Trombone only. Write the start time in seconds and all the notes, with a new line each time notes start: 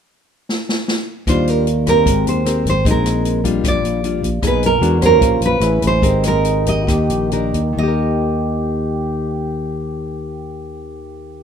4.42 D#4
4.79 F#4
5.20 F4
5.60 E4
6.02 D#4
6.87 G4
7.31 D#4
7.76 G4